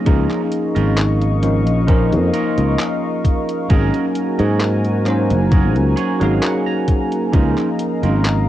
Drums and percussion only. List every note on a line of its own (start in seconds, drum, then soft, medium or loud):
0.06 kick loud
0.06 closed hi-hat medium
0.31 clap soft
0.31 closed hi-hat soft
0.52 closed hi-hat medium
0.76 closed hi-hat medium
0.97 clap loud
0.97 closed hi-hat medium
1.21 closed hi-hat soft
1.43 closed hi-hat medium
1.67 closed hi-hat medium
1.88 kick loud
1.88 closed hi-hat medium
2.12 closed hi-hat soft
2.34 closed hi-hat medium
2.58 closed hi-hat medium
2.79 clap loud
2.79 closed hi-hat medium
3.25 kick medium
3.25 closed hi-hat medium
3.49 closed hi-hat medium
3.70 kick loud
3.70 closed hi-hat medium
3.94 closed hi-hat soft
4.15 closed hi-hat medium
4.39 closed hi-hat medium
4.60 clap loud
4.60 closed hi-hat medium
4.85 closed hi-hat soft
5.06 clap soft
5.06 closed hi-hat medium
5.30 closed hi-hat medium
5.52 kick loud
5.52 closed hi-hat medium
5.76 closed hi-hat soft
5.97 closed hi-hat medium
6.21 closed hi-hat medium
6.43 clap loud
6.43 closed hi-hat medium
6.88 kick medium
6.88 closed hi-hat medium
7.12 closed hi-hat medium
7.34 kick loud
7.34 closed hi-hat medium
7.58 clap soft
7.58 closed hi-hat soft
7.79 closed hi-hat medium
8.03 closed hi-hat medium
8.25 clap loud
8.25 closed hi-hat medium